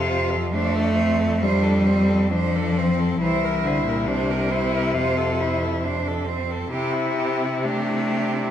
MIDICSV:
0, 0, Header, 1, 5, 480
1, 0, Start_track
1, 0, Key_signature, -1, "major"
1, 0, Tempo, 887574
1, 1728, Time_signature, 4, 2, 24, 8
1, 1728, Tempo, 867052
1, 2688, Tempo, 898204
1, 4600, End_track
2, 0, Start_track
2, 0, Title_t, "Cello"
2, 0, Program_c, 0, 42
2, 0, Note_on_c, 0, 69, 59
2, 50, Note_on_c, 0, 72, 69
2, 58, Note_off_c, 0, 69, 0
2, 167, Note_on_c, 0, 69, 56
2, 175, Note_off_c, 0, 72, 0
2, 284, Note_off_c, 0, 69, 0
2, 287, Note_on_c, 0, 72, 59
2, 409, Note_on_c, 0, 69, 59
2, 417, Note_off_c, 0, 72, 0
2, 518, Note_on_c, 0, 72, 58
2, 526, Note_off_c, 0, 69, 0
2, 643, Note_on_c, 0, 69, 55
2, 651, Note_off_c, 0, 72, 0
2, 759, Note_off_c, 0, 69, 0
2, 762, Note_on_c, 0, 72, 72
2, 882, Note_on_c, 0, 69, 61
2, 890, Note_off_c, 0, 72, 0
2, 1004, Note_on_c, 0, 72, 58
2, 1012, Note_off_c, 0, 69, 0
2, 1130, Note_on_c, 0, 69, 49
2, 1138, Note_off_c, 0, 72, 0
2, 1250, Note_off_c, 0, 69, 0
2, 1258, Note_on_c, 0, 72, 61
2, 1384, Note_on_c, 0, 69, 62
2, 1392, Note_off_c, 0, 72, 0
2, 1504, Note_on_c, 0, 72, 55
2, 1512, Note_off_c, 0, 69, 0
2, 1620, Note_on_c, 0, 69, 51
2, 1628, Note_off_c, 0, 72, 0
2, 1733, Note_off_c, 0, 69, 0
2, 1742, Note_on_c, 0, 72, 67
2, 1868, Note_on_c, 0, 70, 55
2, 1876, Note_off_c, 0, 72, 0
2, 1991, Note_on_c, 0, 72, 58
2, 1999, Note_off_c, 0, 70, 0
2, 2109, Note_on_c, 0, 70, 48
2, 2117, Note_off_c, 0, 72, 0
2, 2215, Note_off_c, 0, 70, 0
2, 2223, Note_on_c, 0, 72, 56
2, 2340, Note_on_c, 0, 70, 54
2, 2348, Note_off_c, 0, 72, 0
2, 2457, Note_on_c, 0, 72, 57
2, 2466, Note_off_c, 0, 70, 0
2, 2583, Note_on_c, 0, 70, 55
2, 2591, Note_off_c, 0, 72, 0
2, 2697, Note_off_c, 0, 70, 0
2, 2702, Note_on_c, 0, 72, 61
2, 2817, Note_on_c, 0, 69, 55
2, 2825, Note_off_c, 0, 72, 0
2, 2950, Note_on_c, 0, 72, 48
2, 2958, Note_off_c, 0, 69, 0
2, 3063, Note_on_c, 0, 69, 46
2, 3071, Note_off_c, 0, 72, 0
2, 3165, Note_off_c, 0, 69, 0
2, 3168, Note_on_c, 0, 72, 56
2, 3300, Note_on_c, 0, 69, 55
2, 3308, Note_off_c, 0, 72, 0
2, 3415, Note_on_c, 0, 72, 52
2, 3423, Note_off_c, 0, 69, 0
2, 3531, Note_on_c, 0, 69, 54
2, 3539, Note_off_c, 0, 72, 0
2, 3645, Note_off_c, 0, 69, 0
2, 3648, Note_on_c, 0, 67, 66
2, 3763, Note_on_c, 0, 64, 56
2, 3771, Note_off_c, 0, 67, 0
2, 3894, Note_on_c, 0, 67, 55
2, 3902, Note_off_c, 0, 64, 0
2, 4023, Note_on_c, 0, 64, 48
2, 4031, Note_off_c, 0, 67, 0
2, 4137, Note_off_c, 0, 64, 0
2, 4140, Note_on_c, 0, 67, 59
2, 4269, Note_on_c, 0, 64, 53
2, 4277, Note_off_c, 0, 67, 0
2, 4388, Note_on_c, 0, 67, 61
2, 4396, Note_off_c, 0, 64, 0
2, 4507, Note_on_c, 0, 64, 55
2, 4515, Note_off_c, 0, 67, 0
2, 4600, Note_off_c, 0, 64, 0
2, 4600, End_track
3, 0, Start_track
3, 0, Title_t, "Cello"
3, 0, Program_c, 1, 42
3, 0, Note_on_c, 1, 65, 85
3, 266, Note_off_c, 1, 65, 0
3, 296, Note_on_c, 1, 62, 68
3, 539, Note_on_c, 1, 60, 61
3, 547, Note_off_c, 1, 62, 0
3, 778, Note_on_c, 1, 62, 70
3, 786, Note_off_c, 1, 60, 0
3, 1018, Note_on_c, 1, 60, 65
3, 1026, Note_off_c, 1, 62, 0
3, 1246, Note_on_c, 1, 62, 61
3, 1254, Note_off_c, 1, 60, 0
3, 1501, Note_on_c, 1, 60, 71
3, 1509, Note_off_c, 1, 62, 0
3, 1728, Note_off_c, 1, 60, 0
3, 1731, Note_on_c, 1, 64, 73
3, 2212, Note_on_c, 1, 62, 68
3, 2220, Note_off_c, 1, 64, 0
3, 2451, Note_on_c, 1, 64, 73
3, 2459, Note_off_c, 1, 62, 0
3, 2692, Note_on_c, 1, 65, 72
3, 2700, Note_off_c, 1, 64, 0
3, 2938, Note_on_c, 1, 64, 67
3, 2946, Note_off_c, 1, 65, 0
3, 3172, Note_on_c, 1, 62, 65
3, 3180, Note_off_c, 1, 64, 0
3, 3398, Note_on_c, 1, 60, 67
3, 3406, Note_off_c, 1, 62, 0
3, 3637, Note_off_c, 1, 60, 0
3, 3640, Note_on_c, 1, 64, 73
3, 4139, Note_on_c, 1, 62, 65
3, 4147, Note_off_c, 1, 64, 0
3, 4600, Note_off_c, 1, 62, 0
3, 4600, End_track
4, 0, Start_track
4, 0, Title_t, "Cello"
4, 0, Program_c, 2, 42
4, 0, Note_on_c, 2, 48, 96
4, 178, Note_on_c, 2, 53, 89
4, 186, Note_off_c, 2, 48, 0
4, 296, Note_on_c, 2, 57, 113
4, 305, Note_off_c, 2, 53, 0
4, 768, Note_on_c, 2, 55, 100
4, 776, Note_off_c, 2, 57, 0
4, 1255, Note_on_c, 2, 53, 108
4, 1263, Note_off_c, 2, 55, 0
4, 1741, Note_on_c, 2, 52, 92
4, 1750, Note_off_c, 2, 53, 0
4, 1967, Note_off_c, 2, 52, 0
4, 1970, Note_on_c, 2, 50, 83
4, 2085, Note_off_c, 2, 50, 0
4, 2093, Note_on_c, 2, 46, 80
4, 2210, Note_on_c, 2, 48, 99
4, 2218, Note_off_c, 2, 46, 0
4, 3403, Note_off_c, 2, 48, 0
4, 3634, Note_on_c, 2, 48, 83
4, 4140, Note_on_c, 2, 57, 99
4, 4148, Note_off_c, 2, 48, 0
4, 4600, Note_off_c, 2, 57, 0
4, 4600, End_track
5, 0, Start_track
5, 0, Title_t, "Cello"
5, 0, Program_c, 3, 42
5, 0, Note_on_c, 3, 41, 79
5, 1708, Note_off_c, 3, 41, 0
5, 1730, Note_on_c, 3, 36, 72
5, 2690, Note_on_c, 3, 41, 64
5, 2698, Note_off_c, 3, 36, 0
5, 3632, Note_off_c, 3, 41, 0
5, 3635, Note_on_c, 3, 48, 70
5, 4600, Note_off_c, 3, 48, 0
5, 4600, End_track
0, 0, End_of_file